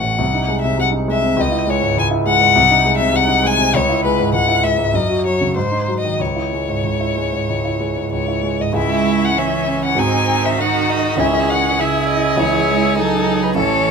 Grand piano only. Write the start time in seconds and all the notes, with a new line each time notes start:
Already playing: A1 A2 A3 C#4
0.03 A2
0.19 C2
0.34 D#4
0.49 G#3
0.64 C3
0.78 C2
0.92 D#4
1.08 G#3
1.22 C3
1.37 C#2
1.52 E4
1.67 G#3
1.82 G#2
1.97 C#2
2.11 E4
2.26 G#3
2.41 G#2
2.55 C2
2.71 D#4
2.85 G#3
3.00 C3
3.14 C2
3.28 D#4
3.43 G#3
3.59 C3
3.74 C#2
3.89 E4
4.05 G#3
4.20 G#2
4.33 C#2
4.48 E4
4.64 G#3
4.78 G#2
4.94 F#2
5.09 F#4
5.25 F#3
5.41 C#3
5.56 G#2
5.71 D#4
5.88 F#3
6.04 D#3
6.20 C#2
6.36 E4
6.53 G#3
6.68 G#2
6.84 C#2
7.00 E4
7.17 G#3
7.33 G#2
7.49 C#2
7.65 E4
7.80 G#3
7.97 G#2
8.13 C#2
8.28 E4
8.43 G#3
8.60 G#2
8.73 C#2 G#3 E4 G#4
9.95 G#2 C4 F#4 G#4
11.17 C#2 C#4 E4 G#4
12.36 C#2 C#4 E4 G#4
13.55 A1 C#4 E4 A4